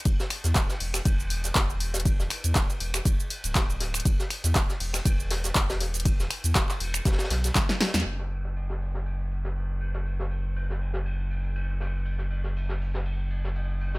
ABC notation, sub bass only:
X:1
M:4/4
L:1/16
Q:"Swing 16ths" 1/4=120
K:Edor
V:1 name="Sub bass" clef=bass
E,,, z2 E,, D,,, z E,,,2 E,,,4 E,,,4- | E,,, E,,, z E,, D,,, z E,,,2 E,,, z2 D,,,4- D,,, | E,,, z2 E,, D,,, z E,,,2 E,,,4 E,,,4- | E,,, E,,, z E,, D,,, z E,,,2 E,,, z B,,,2 G,,, z2 E,, |
F,,,16- | F,,,16- | F,,,16 |]